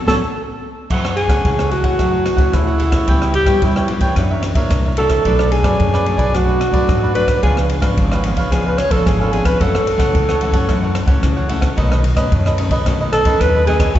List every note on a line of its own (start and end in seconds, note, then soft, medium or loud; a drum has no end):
0.07 0.18 A1 loud
0.07 0.17 F#3 loud
0.07 0.17 A3 medium
0.07 0.17 C#4 medium
0.07 0.17 F#4 medium
0.07 0.14 A4 loud
0.07 0.17 A4 medium
0.07 0.17 C#5 medium
0.07 kick medium
0.07 snare medium
0.90 1.25 F#2 loud
0.90 1.42 F#3 medium
0.90 1.03 E4 medium
0.90 1.03 A4 medium
0.90 1.03 C#5 medium
0.90 1.04 F#5 medium
0.90 kick medium
0.90 crash medium
1.05 1.16 A4 soft
1.05 1.16 C#5 soft
1.05 1.16 F#5 soft
1.05 cross-stick medium
1.17 1.68 G#4 medium
1.17 muted cavaquinho stroke soft
1.17 ride soft
1.28 1.41 C#2 loud
1.28 1.67 A3 medium
1.28 1.67 E4 medium
1.28 1.67 G#4 medium
1.28 1.57 A4 medium
1.28 1.57 C#5 medium
1.28 1.56 F#5 medium
1.28 kick medium
1.28 cross-stick medium
1.28 ride soft
1.45 1.80 C#2 medium
1.45 1.97 C#3 medium
1.45 kick medium
1.45 ride soft
1.59 1.70 A4 medium
1.59 1.71 C#5 medium
1.59 1.71 F#5 medium
1.59 cross-stick medium
1.71 1.95 A3 medium
1.71 1.84 E4 soft
1.71 1.95 E4 medium
1.71 2.56 F#4 medium
1.71 1.95 G#4 medium
1.71 1.84 A4 soft
1.71 1.84 C#5 soft
1.71 1.83 F#5 medium
1.71 ride soft
1.82 2.30 F#2 medium
1.82 1.98 A4 medium
1.82 1.98 C#5 medium
1.82 1.97 F#5 medium
1.82 kick medium
1.82 ride soft
1.99 2.51 F#3 medium
1.99 2.36 A3 medium
1.99 2.12 E4 medium
1.99 2.36 E4 medium
1.99 2.36 G#4 medium
1.99 2.12 A4 soft
1.99 2.12 C#5 medium
1.99 2.11 F#5 medium
1.99 kick medium
1.99 cross-stick medium
1.99 ride soft
2.12 2.24 A4 soft
2.12 2.24 C#5 soft
2.12 2.25 F#5 medium
2.25 muted cavaquinho stroke soft
2.25 cross-stick medium
2.25 ride soft
2.36 2.50 C#2 medium
2.36 2.76 A3 medium
2.36 2.76 E4 medium
2.36 2.76 G#4 medium
2.36 2.65 A4 medium
2.36 2.65 C#5 medium
2.36 2.64 F#5 medium
2.36 kick medium
2.36 ride soft
2.53 3.00 D2 medium
2.53 3.05 C#3 medium
2.53 3.34 E4 medium
2.53 kick medium
2.53 cross-stick medium
2.53 ride soft
2.67 2.78 A4 soft
2.67 2.78 C#5 soft
2.67 2.79 F#5 medium
2.78 3.03 A3 medium
2.78 2.92 E4 medium
2.78 3.04 E4 medium
2.78 3.04 G#4 medium
2.78 2.92 A4 medium
2.78 2.91 C#5 medium
2.78 2.90 F#5 medium
2.78 ride soft
2.91 3.06 A4 soft
2.91 3.06 C#5 soft
2.91 3.05 F#5 soft
2.91 kick medium
2.91 cross-stick medium
2.91 ride medium
3.07 3.43 C#2 loud
3.07 3.60 C#3 medium
3.07 3.34 G3 medium
3.07 3.34 B3 medium
3.07 3.20 E4 medium
3.07 3.34 E4 medium
3.07 3.20 B4 medium
3.07 3.21 C#5 medium
3.07 3.20 G5 medium
3.07 kick medium
3.07 ride soft
3.21 3.33 B4 soft
3.21 3.33 C#5 soft
3.21 3.34 G5 soft
3.21 cross-stick medium
3.34 3.65 G4 loud
3.34 muted cavaquinho stroke soft
3.34 ride medium
3.45 3.58 G2 loud
3.45 3.84 G3 medium
3.45 3.85 B3 medium
3.45 3.85 E4 medium
3.45 3.74 B4 medium
3.45 3.74 C#5 medium
3.45 3.73 G5 medium
3.45 kick medium
3.45 cross-stick medium
3.45 ride soft
3.62 3.97 G2 medium
3.62 4.14 C#3 medium
3.62 3.90 E4 medium
3.62 kick medium
3.62 ride soft
3.76 3.87 B4 medium
3.76 3.88 C#5 medium
3.76 3.89 G5 medium
3.76 cross-stick medium
3.88 4.05 G3 medium
3.88 4.05 B3 medium
3.88 4.01 E4 soft
3.88 4.06 E4 medium
3.88 4.02 B4 soft
3.88 4.01 C#5 medium
3.88 4.00 G5 medium
3.88 ride soft
3.99 4.13 E2 medium
3.99 4.16 B4 medium
3.99 4.15 C#5 medium
3.99 4.15 G5 medium
3.99 kick medium
3.99 ride medium
4.16 4.51 F#2 loud
4.16 4.69 F#2 medium
4.16 4.53 E3 medium
4.16 4.54 A#3 medium
4.16 4.54 D4 medium
4.16 4.29 F#4 medium
4.16 4.30 A#4 medium
4.16 4.30 C#5 medium
4.16 4.30 E5 medium
4.16 kick medium
4.16 cross-stick medium
4.16 ride soft
4.31 4.42 A#4 soft
4.31 4.43 C#5 soft
4.31 4.43 E5 medium
4.43 muted cavaquinho stroke soft
4.43 cross-stick medium
4.43 ride medium
4.54 4.67 C#2 medium
4.54 4.93 E3 medium
4.54 4.93 A#3 medium
4.54 4.93 D4 medium
4.54 4.83 A#4 medium
4.54 4.83 C#5 medium
4.54 4.83 E5 medium
4.54 kick medium
4.54 ride medium
4.70 5.17 C2 medium
4.70 kick medium
4.70 cross-stick medium
4.70 ride soft
4.86 4.97 A#4 soft
4.86 4.97 C#5 soft
4.86 4.98 E5 medium
4.97 5.21 E3 medium
4.97 5.21 A#3 medium
4.97 5.21 D4 medium
4.97 5.10 F#4 medium
4.97 5.49 A4 loud
4.97 5.11 A#4 medium
4.97 5.10 C#5 medium
4.97 5.09 E5 medium
4.97 ride medium
5.09 5.25 A#4 soft
5.09 5.24 C#5 soft
5.09 5.24 E5 soft
5.09 kick medium
5.09 cross-stick medium
5.09 ride soft
5.25 5.60 B1 loud
5.25 5.77 B2 medium
5.25 5.62 F#3 medium
5.25 5.62 A3 medium
5.25 5.38 D4 medium
5.25 5.62 D4 medium
5.25 5.38 A4 medium
5.25 5.39 B4 medium
5.25 5.38 D5 medium
5.25 kick medium
5.25 ride soft
5.39 5.50 A4 soft
5.39 5.51 B4 soft
5.39 5.51 D5 medium
5.39 cross-stick medium
5.51 6.37 G#4 loud
5.51 muted cavaquinho stroke soft
5.51 ride medium
5.62 5.76 F#2 medium
5.62 6.02 F#3 medium
5.62 6.02 A3 medium
5.62 6.03 D4 medium
5.62 5.92 A4 soft
5.62 5.92 B4 medium
5.62 5.91 D5 medium
5.62 kick medium
5.62 cross-stick medium
5.62 ride soft
5.79 6.31 F#2 medium
5.79 6.15 F#2 medium
5.79 kick medium
5.79 ride medium
5.93 6.05 A4 medium
5.93 6.05 B4 medium
5.93 6.06 D5 medium
5.93 cross-stick medium
6.06 6.23 F#3 medium
6.06 6.23 A3 medium
6.06 6.19 D4 soft
6.06 6.23 D4 medium
6.06 6.18 A4 medium
6.06 6.17 B4 medium
6.06 6.17 D5 medium
6.06 ride soft
6.17 6.65 B1 medium
6.17 6.33 A4 medium
6.17 6.32 B4 medium
6.17 6.32 D5 medium
6.17 kick medium
6.17 ride soft
6.33 6.86 B2 medium
6.33 6.60 F#3 medium
6.33 6.60 A3 medium
6.33 6.46 D4 medium
6.33 6.60 D4 medium
6.33 7.14 F#4 medium
6.33 6.47 A4 medium
6.33 6.47 B4 soft
6.33 6.47 D5 medium
6.33 kick medium
6.33 cross-stick medium
6.33 ride soft
6.48 6.59 A4 soft
6.48 6.60 B4 medium
6.48 6.60 D5 soft
6.60 muted cavaquinho stroke soft
6.60 cross-stick medium
6.60 ride soft
6.71 6.85 F#2 medium
6.71 7.10 F#3 medium
6.71 7.11 A3 medium
6.71 7.11 D4 medium
6.71 7.01 A4 soft
6.71 7.01 B4 medium
6.71 7.00 D5 medium
6.71 kick medium
6.71 ride soft
6.88 7.40 F#2 medium
6.88 7.35 G#2 medium
6.88 kick medium
6.88 cross-stick medium
6.88 ride soft
7.03 7.14 A4 soft
7.03 7.15 B4 medium
7.03 7.15 D5 soft
7.14 7.38 F#3 medium
7.14 7.38 A3 medium
7.14 7.28 D4 medium
7.14 7.39 D4 medium
7.14 7.28 A4 medium
7.14 7.41 B4 medium
7.14 7.27 B4 medium
7.14 7.26 D5 medium
7.14 ride soft
7.27 7.42 A4 soft
7.27 7.42 B4 soft
7.27 7.41 D5 medium
7.27 kick medium
7.27 cross-stick medium
7.27 ride medium
7.43 7.78 C#2 loud
7.43 7.95 C#3 medium
7.43 7.80 F3 medium
7.43 7.80 B3 medium
7.43 7.80 D4 medium
7.43 7.55 F4 medium
7.43 7.60 G#4 medium
7.43 7.56 B4 medium
7.43 7.56 C#5 medium
7.43 7.56 F5 medium
7.43 kick medium
7.43 ride soft
7.57 7.69 B4 soft
7.57 7.69 C#5 soft
7.57 7.69 F5 soft
7.57 cross-stick medium
7.70 muted cavaquinho stroke soft
7.70 ride medium
7.80 7.93 G#1 loud
7.80 8.19 F3 medium
7.80 8.20 B3 medium
7.80 8.20 D4 medium
7.80 8.10 B4 medium
7.80 8.09 C#5 medium
7.80 8.09 F5 medium
7.80 kick medium
7.80 cross-stick medium
7.80 ride medium
7.97 8.32 G#1 medium
7.97 8.49 G#2 medium
7.97 kick medium
7.97 ride medium
8.12 8.24 B4 medium
8.12 8.24 C#5 medium
8.12 8.24 F5 medium
8.12 cross-stick medium
8.24 8.40 F3 medium
8.24 8.41 B3 medium
8.24 8.41 D4 medium
8.24 8.37 F4 soft
8.24 8.37 B4 soft
8.24 8.37 C#5 soft
8.24 8.36 F5 soft
8.24 ride medium
8.35 8.82 C#2 medium
8.35 8.50 F5 medium
8.35 kick medium
8.35 ride medium
8.39 8.51 B4 medium
8.39 8.51 C#5 medium
8.52 9.04 C#3 medium
8.52 8.77 F3 medium
8.52 8.78 B3 medium
8.52 8.78 D4 medium
8.52 8.65 F4 soft
8.52 8.68 G#4 medium
8.52 8.65 B4 medium
8.52 8.65 C#5 medium
8.52 8.66 F5 medium
8.52 kick medium
8.52 cross-stick medium
8.52 ride soft
8.66 8.79 B4 medium
8.66 8.78 B4 soft
8.66 8.78 C#5 soft
8.66 8.78 F5 medium
8.78 8.93 C#5 loud
8.78 cross-stick medium
8.78 ride soft
8.89 9.02 G#1 medium
8.89 9.28 F3 medium
8.89 9.28 B3 medium
8.89 9.29 D4 medium
8.89 9.08 A4 medium
8.89 9.19 B4 medium
8.89 9.18 C#5 medium
8.89 9.18 F5 medium
8.89 kick medium
8.89 ride medium
9.06 9.52 G#1 medium
9.06 9.58 G#2 medium
9.06 9.22 G#4 medium
9.06 kick medium
9.06 cross-stick medium
9.06 ride soft
9.20 9.34 A4 medium
9.20 9.32 B4 soft
9.20 9.32 C#5 soft
9.20 9.33 F5 medium
9.32 9.56 F3 medium
9.32 9.56 B3 medium
9.32 9.56 D4 medium
9.32 9.46 F4 medium
9.32 9.47 G#4 medium
9.32 9.46 B4 medium
9.32 9.45 C#5 medium
9.32 9.44 F5 medium
9.32 ride soft
9.45 9.62 B4 medium
9.45 9.59 B4 soft
9.45 9.59 C#5 soft
9.45 9.59 F5 soft
9.45 kick medium
9.45 cross-stick medium
9.45 ride medium
9.60 10.12 F#2 medium
9.60 9.95 F#2 loud
9.60 9.86 E3 soft
9.60 9.86 A3 medium
9.60 9.86 C#4 medium
9.60 9.73 E4 medium
9.60 11.24 A4 medium
9.60 9.73 A4 medium
9.60 9.74 C#5 medium
9.60 9.74 F#5 medium
9.60 kick medium
9.60 ride soft
9.75 9.86 A4 soft
9.75 9.87 C#5 soft
9.75 9.87 F#5 soft
9.75 cross-stick medium
9.87 muted cavaquinho stroke soft
9.87 ride medium
9.98 10.11 C#2 loud
9.98 10.37 E3 medium
9.98 10.37 A3 medium
9.98 10.37 C#4 medium
9.98 10.27 A4 medium
9.98 10.27 C#5 medium
9.98 10.26 F#5 medium
9.98 kick medium
9.98 cross-stick medium
9.98 ride medium
10.15 10.50 C#2 medium
10.15 10.66 C#3 medium
10.15 kick medium
10.15 ride soft
10.29 10.40 A4 soft
10.29 10.41 C#5 medium
10.29 10.41 F#5 medium
10.29 cross-stick medium
10.41 10.64 E3 medium
10.41 10.65 A3 medium
10.41 10.65 C#4 medium
10.41 10.54 E4 soft
10.41 10.54 A4 soft
10.41 10.53 C#5 soft
10.41 10.52 F#5 medium
10.41 ride soft
10.52 11.00 F#2 loud
10.52 10.68 A4 medium
10.52 10.67 C#5 medium
10.52 10.67 F#5 medium
10.52 kick medium
10.52 ride medium
10.68 11.21 F#2 medium
10.68 10.95 E3 medium
10.68 10.95 A3 medium
10.68 10.95 C#4 medium
10.68 10.81 E4 medium
10.68 10.82 A4 soft
10.68 10.82 C#5 medium
10.68 10.82 F#5 medium
10.68 kick medium
10.68 cross-stick medium
10.68 ride soft
10.83 10.94 A4 soft
10.83 10.94 C#5 soft
10.83 10.95 F#5 medium
10.95 muted cavaquinho stroke soft
10.95 cross-stick medium
10.95 ride soft
11.06 11.19 C#2 medium
11.06 11.46 E3 medium
11.06 11.46 A3 medium
11.06 11.46 C#4 medium
11.06 11.36 A4 medium
11.06 11.35 C#5 medium
11.06 11.35 F#5 medium
11.06 kick medium
11.06 ride soft
11.23 11.70 C#2 loud
11.23 11.75 C#3 medium
11.23 kick medium
11.23 cross-stick medium
11.23 ride soft
11.37 11.48 A4 soft
11.37 11.48 C#5 soft
11.37 11.49 F#5 medium
11.49 11.66 E3 medium
11.49 11.67 A3 medium
11.49 11.67 C#4 medium
11.49 11.62 E4 medium
11.49 11.62 A4 medium
11.49 11.61 C#5 medium
11.49 11.60 F#5 medium
11.49 ride soft
11.61 11.76 A4 soft
11.61 11.76 C#5 soft
11.61 11.75 F#5 soft
11.61 kick medium
11.61 cross-stick medium
11.61 ride soft
11.77 12.12 B1 loud
11.77 12.30 B2 medium
11.77 12.03 D#3 medium
11.77 12.04 A3 medium
11.77 12.04 C#4 medium
11.77 11.90 D#4 medium
11.77 11.90 A4 medium
11.77 11.90 B4 medium
11.77 11.89 D#5 medium
11.77 kick medium
11.77 ride soft
11.91 12.03 A4 soft
11.91 12.03 B4 soft
11.91 12.04 D#5 soft
11.91 cross-stick medium
12.04 muted cavaquinho stroke soft
12.04 ride medium
12.15 12.28 F#2 loud
12.15 12.54 D#3 medium
12.15 12.54 A3 medium
12.15 12.55 C#4 medium
12.15 12.45 A4 medium
12.15 12.44 B4 medium
12.15 12.44 D#5 medium
12.15 kick medium
12.15 cross-stick medium
12.15 ride medium
12.32 12.67 F#2 medium
12.32 12.84 F#2 medium
12.32 kick medium
12.32 ride medium
12.46 12.58 A4 medium
12.46 12.58 B4 medium
12.46 12.58 D#5 medium
12.46 cross-stick medium
12.58 12.75 D#3 medium
12.58 12.75 A3 medium
12.58 12.76 C#4 medium
12.58 12.72 D#4 medium
12.58 12.72 A4 soft
12.58 12.71 B4 soft
12.58 12.70 D#5 medium
12.58 ride medium
12.69 13.17 B1 medium
12.69 12.86 A4 medium
12.69 12.85 B4 medium
12.69 12.85 D#5 medium
12.69 kick medium
12.69 ride medium
12.86 13.38 B2 medium
12.86 13.23 D#3 medium
12.86 13.23 A3 medium
12.86 13.23 C#4 medium
12.86 12.99 D#4 soft
12.86 13.00 A4 medium
12.86 13.00 B4 medium
12.86 12.99 D#5 medium
12.86 kick medium
12.86 cross-stick medium
12.86 ride soft
13.01 13.12 A4 soft
13.01 13.12 B4 soft
13.01 13.13 D#5 medium
13.13 13.42 A4 loud
13.13 muted cavaquinho stroke soft
13.13 cross-stick medium
13.13 ride medium
13.24 13.37 F#2 medium
13.24 13.63 D#3 medium
13.24 13.63 A3 medium
13.24 13.63 C#4 medium
13.24 13.54 A4 medium
13.24 13.53 B4 medium
13.24 13.53 D#5 medium
13.24 kick medium
13.24 ride medium
13.41 13.87 D#2 loud
13.41 13.93 F#2 medium
13.41 13.66 B4 loud
13.41 kick medium
13.41 cross-stick medium
13.41 ride medium
13.55 13.67 A4 soft
13.55 13.67 B4 medium
13.55 13.67 D#5 medium
13.67 13.84 D#3 medium
13.67 13.84 A3 medium
13.67 13.84 C#4 medium
13.67 13.80 D#4 medium
13.67 13.96 G#4 medium
13.67 13.81 A4 medium
13.67 13.80 B4 medium
13.67 13.79 D#5 medium
13.67 ride medium
13.80 13.94 A4 soft
13.80 13.94 B4 soft
13.80 13.93 D#5 soft
13.80 kick medium
13.80 cross-stick medium
13.80 ride medium
13.95 13.99 E2 loud
13.95 13.99 E3 medium
13.95 13.99 G#3 medium
13.95 13.99 E4 medium
13.95 13.99 F#4 medium
13.95 13.99 G#4 medium
13.95 kick medium
13.95 ride soft